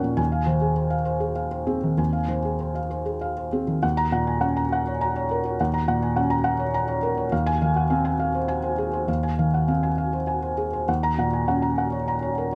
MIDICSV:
0, 0, Header, 1, 2, 480
1, 0, Start_track
1, 0, Tempo, 589391
1, 153, Time_signature, 3, 2, 24, 8
1, 1116, Tempo, 611621
1, 3516, Tempo, 579151
1, 6876, Tempo, 596421
1, 10150, End_track
2, 0, Start_track
2, 0, Title_t, "Felt piano"
2, 0, Program_c, 0, 0
2, 0, Control_c, 0, 64, 127
2, 0, Note_on_c, 0, 39, 71
2, 0, Note_on_c, 0, 46, 53
2, 0, Note_on_c, 0, 61, 58
2, 0, Note_on_c, 0, 70, 59
2, 0, Note_on_c, 0, 73, 55
2, 0, Note_on_c, 0, 78, 61
2, 0, Note_on_c, 0, 82, 60
2, 23, Note_off_c, 0, 46, 0
2, 23, Note_on_c, 0, 46, 53
2, 102, Note_off_c, 0, 70, 0
2, 115, Note_off_c, 0, 39, 0
2, 138, Note_on_c, 0, 39, 66
2, 138, Note_on_c, 0, 80, 72
2, 147, Note_off_c, 0, 46, 0
2, 147, Note_off_c, 0, 61, 0
2, 168, Control_c, 0, 64, 0
2, 169, Note_off_c, 0, 78, 0
2, 170, Note_off_c, 0, 73, 0
2, 173, Note_off_c, 0, 82, 0
2, 260, Note_on_c, 0, 77, 58
2, 320, Control_c, 0, 64, 127
2, 335, Note_off_c, 0, 80, 0
2, 375, Note_on_c, 0, 72, 51
2, 379, Note_on_c, 0, 51, 51
2, 456, Note_off_c, 0, 77, 0
2, 501, Note_on_c, 0, 68, 48
2, 574, Note_off_c, 0, 72, 0
2, 619, Note_on_c, 0, 72, 51
2, 698, Note_off_c, 0, 68, 0
2, 736, Note_on_c, 0, 77, 51
2, 769, Note_off_c, 0, 51, 0
2, 818, Note_off_c, 0, 72, 0
2, 856, Note_on_c, 0, 72, 56
2, 937, Note_off_c, 0, 77, 0
2, 978, Note_on_c, 0, 68, 51
2, 1060, Note_off_c, 0, 72, 0
2, 1102, Note_on_c, 0, 77, 52
2, 1181, Note_off_c, 0, 68, 0
2, 1228, Note_on_c, 0, 72, 49
2, 1301, Note_off_c, 0, 77, 0
2, 1349, Note_on_c, 0, 68, 55
2, 1350, Note_on_c, 0, 60, 52
2, 1425, Note_off_c, 0, 72, 0
2, 1478, Note_on_c, 0, 51, 47
2, 1548, Note_off_c, 0, 68, 0
2, 1562, Note_off_c, 0, 39, 0
2, 1591, Note_on_c, 0, 39, 59
2, 1596, Note_on_c, 0, 80, 52
2, 1615, Control_c, 0, 64, 0
2, 1674, Note_off_c, 0, 51, 0
2, 1710, Note_on_c, 0, 77, 49
2, 1744, Note_off_c, 0, 60, 0
2, 1779, Control_c, 0, 64, 127
2, 1795, Note_off_c, 0, 80, 0
2, 1831, Note_on_c, 0, 51, 46
2, 1834, Note_on_c, 0, 72, 51
2, 1913, Note_off_c, 0, 77, 0
2, 1961, Note_on_c, 0, 68, 42
2, 2036, Note_off_c, 0, 72, 0
2, 2082, Note_on_c, 0, 72, 50
2, 2160, Note_off_c, 0, 68, 0
2, 2199, Note_on_c, 0, 77, 49
2, 2229, Note_off_c, 0, 51, 0
2, 2280, Note_off_c, 0, 72, 0
2, 2321, Note_on_c, 0, 72, 55
2, 2398, Note_off_c, 0, 77, 0
2, 2438, Note_on_c, 0, 68, 46
2, 2518, Note_off_c, 0, 72, 0
2, 2562, Note_on_c, 0, 77, 55
2, 2637, Note_off_c, 0, 68, 0
2, 2686, Note_on_c, 0, 72, 46
2, 2759, Note_off_c, 0, 77, 0
2, 2806, Note_on_c, 0, 68, 52
2, 2809, Note_on_c, 0, 60, 49
2, 2882, Note_off_c, 0, 72, 0
2, 2923, Note_on_c, 0, 51, 47
2, 3001, Note_off_c, 0, 68, 0
2, 3014, Note_off_c, 0, 39, 0
2, 3043, Note_on_c, 0, 39, 70
2, 3043, Note_on_c, 0, 78, 68
2, 3046, Note_off_c, 0, 51, 0
2, 3049, Note_off_c, 0, 60, 0
2, 3064, Control_c, 0, 64, 0
2, 3158, Note_on_c, 0, 82, 88
2, 3196, Control_c, 0, 64, 127
2, 3234, Note_off_c, 0, 78, 0
2, 3275, Note_on_c, 0, 46, 56
2, 3277, Note_on_c, 0, 78, 59
2, 3350, Note_off_c, 0, 82, 0
2, 3394, Note_on_c, 0, 80, 49
2, 3467, Note_off_c, 0, 78, 0
2, 3499, Note_on_c, 0, 61, 58
2, 3501, Note_on_c, 0, 78, 69
2, 3513, Note_off_c, 0, 80, 0
2, 3629, Note_on_c, 0, 82, 60
2, 3659, Note_off_c, 0, 46, 0
2, 3704, Note_off_c, 0, 78, 0
2, 3761, Note_on_c, 0, 78, 71
2, 3829, Note_off_c, 0, 82, 0
2, 3881, Note_on_c, 0, 73, 60
2, 3897, Note_off_c, 0, 61, 0
2, 3955, Note_off_c, 0, 78, 0
2, 4000, Note_on_c, 0, 82, 70
2, 4074, Note_off_c, 0, 73, 0
2, 4122, Note_on_c, 0, 73, 61
2, 4193, Note_off_c, 0, 82, 0
2, 4247, Note_on_c, 0, 70, 67
2, 4314, Note_off_c, 0, 73, 0
2, 4363, Note_on_c, 0, 73, 60
2, 4435, Note_off_c, 0, 70, 0
2, 4443, Note_off_c, 0, 39, 0
2, 4489, Note_on_c, 0, 39, 72
2, 4491, Note_on_c, 0, 78, 62
2, 4495, Control_c, 0, 64, 0
2, 4553, Note_off_c, 0, 73, 0
2, 4601, Note_on_c, 0, 82, 68
2, 4616, Control_c, 0, 64, 127
2, 4676, Note_off_c, 0, 78, 0
2, 4718, Note_on_c, 0, 46, 59
2, 4720, Note_on_c, 0, 78, 72
2, 4790, Note_off_c, 0, 82, 0
2, 4840, Note_on_c, 0, 80, 55
2, 4909, Note_off_c, 0, 78, 0
2, 4954, Note_on_c, 0, 61, 67
2, 4954, Note_on_c, 0, 78, 67
2, 4957, Note_off_c, 0, 80, 0
2, 5069, Note_on_c, 0, 82, 74
2, 5097, Note_off_c, 0, 46, 0
2, 5144, Note_off_c, 0, 78, 0
2, 5184, Note_on_c, 0, 78, 75
2, 5261, Note_off_c, 0, 82, 0
2, 5311, Note_on_c, 0, 73, 66
2, 5334, Note_off_c, 0, 61, 0
2, 5379, Note_off_c, 0, 78, 0
2, 5434, Note_on_c, 0, 82, 75
2, 5503, Note_off_c, 0, 73, 0
2, 5548, Note_on_c, 0, 73, 69
2, 5625, Note_off_c, 0, 82, 0
2, 5670, Note_on_c, 0, 70, 70
2, 5742, Note_off_c, 0, 73, 0
2, 5790, Note_on_c, 0, 73, 66
2, 5863, Note_off_c, 0, 70, 0
2, 5883, Note_off_c, 0, 39, 0
2, 5911, Note_off_c, 0, 73, 0
2, 5913, Note_on_c, 0, 77, 72
2, 5914, Note_on_c, 0, 39, 78
2, 5927, Control_c, 0, 64, 0
2, 6032, Note_on_c, 0, 80, 94
2, 6058, Control_c, 0, 64, 127
2, 6104, Note_off_c, 0, 77, 0
2, 6159, Note_on_c, 0, 51, 63
2, 6160, Note_on_c, 0, 77, 72
2, 6223, Note_off_c, 0, 80, 0
2, 6281, Note_on_c, 0, 78, 51
2, 6347, Note_off_c, 0, 77, 0
2, 6394, Note_on_c, 0, 77, 68
2, 6395, Note_off_c, 0, 78, 0
2, 6397, Note_on_c, 0, 60, 67
2, 6516, Note_on_c, 0, 80, 67
2, 6539, Note_off_c, 0, 51, 0
2, 6586, Note_off_c, 0, 77, 0
2, 6638, Note_on_c, 0, 77, 67
2, 6708, Note_off_c, 0, 80, 0
2, 6762, Note_on_c, 0, 72, 60
2, 6782, Note_off_c, 0, 60, 0
2, 6830, Note_off_c, 0, 77, 0
2, 6876, Note_on_c, 0, 80, 72
2, 6952, Note_off_c, 0, 72, 0
2, 6998, Note_on_c, 0, 72, 62
2, 7067, Note_off_c, 0, 80, 0
2, 7116, Note_on_c, 0, 68, 56
2, 7188, Note_off_c, 0, 72, 0
2, 7238, Note_on_c, 0, 72, 60
2, 7307, Note_off_c, 0, 68, 0
2, 7324, Note_off_c, 0, 39, 0
2, 7356, Note_on_c, 0, 39, 60
2, 7358, Note_on_c, 0, 77, 59
2, 7370, Control_c, 0, 64, 0
2, 7429, Note_off_c, 0, 72, 0
2, 7481, Note_on_c, 0, 80, 58
2, 7502, Control_c, 0, 64, 127
2, 7550, Note_off_c, 0, 77, 0
2, 7605, Note_on_c, 0, 77, 53
2, 7606, Note_on_c, 0, 51, 55
2, 7672, Note_off_c, 0, 80, 0
2, 7727, Note_on_c, 0, 78, 49
2, 7794, Note_off_c, 0, 77, 0
2, 7841, Note_on_c, 0, 60, 49
2, 7842, Note_on_c, 0, 77, 56
2, 7843, Note_off_c, 0, 78, 0
2, 7961, Note_on_c, 0, 80, 59
2, 7987, Note_off_c, 0, 51, 0
2, 8033, Note_off_c, 0, 77, 0
2, 8079, Note_on_c, 0, 77, 57
2, 8153, Note_off_c, 0, 80, 0
2, 8203, Note_on_c, 0, 72, 49
2, 8226, Note_off_c, 0, 60, 0
2, 8273, Note_off_c, 0, 77, 0
2, 8317, Note_on_c, 0, 80, 54
2, 8395, Note_off_c, 0, 72, 0
2, 8439, Note_on_c, 0, 72, 47
2, 8513, Note_off_c, 0, 80, 0
2, 8560, Note_on_c, 0, 68, 55
2, 8635, Note_off_c, 0, 72, 0
2, 8686, Note_on_c, 0, 72, 55
2, 8755, Note_off_c, 0, 68, 0
2, 8774, Note_off_c, 0, 39, 0
2, 8806, Note_off_c, 0, 72, 0
2, 8808, Note_on_c, 0, 39, 62
2, 8810, Note_on_c, 0, 78, 58
2, 8821, Control_c, 0, 64, 0
2, 8928, Note_on_c, 0, 82, 80
2, 8969, Control_c, 0, 64, 127
2, 9000, Note_off_c, 0, 78, 0
2, 9049, Note_on_c, 0, 46, 52
2, 9053, Note_on_c, 0, 78, 54
2, 9118, Note_off_c, 0, 82, 0
2, 9169, Note_on_c, 0, 80, 46
2, 9240, Note_off_c, 0, 78, 0
2, 9286, Note_off_c, 0, 80, 0
2, 9287, Note_on_c, 0, 61, 58
2, 9288, Note_on_c, 0, 78, 58
2, 9403, Note_on_c, 0, 82, 62
2, 9429, Note_off_c, 0, 46, 0
2, 9477, Note_off_c, 0, 78, 0
2, 9529, Note_on_c, 0, 78, 60
2, 9594, Note_off_c, 0, 82, 0
2, 9642, Note_on_c, 0, 73, 51
2, 9668, Note_off_c, 0, 61, 0
2, 9718, Note_off_c, 0, 78, 0
2, 9770, Note_on_c, 0, 82, 64
2, 9834, Note_off_c, 0, 73, 0
2, 9887, Note_on_c, 0, 73, 53
2, 9957, Note_off_c, 0, 82, 0
2, 10011, Note_on_c, 0, 70, 57
2, 10074, Note_off_c, 0, 73, 0
2, 10150, Note_off_c, 0, 39, 0
2, 10150, Note_off_c, 0, 70, 0
2, 10150, End_track
0, 0, End_of_file